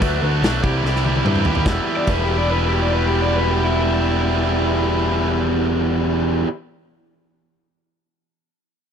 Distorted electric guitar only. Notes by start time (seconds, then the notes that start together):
0.00 D3 F#3 A3 D4 F#4
0.22 A3 D4 F#4
0.42 F#3 A3 D4 F#4
0.63 C3 E3 G3 E4 G4
0.84 E3 G3 E4 G4
1.04 C3 E3 G3 E4 G4
1.25 E3 G3 E4 G4
1.46 G3 E4 G4
1.66 E2 B2 E3 G3 B3
1.70 E4
2.07 E2 B2 E3 G3 B3
2.11 E4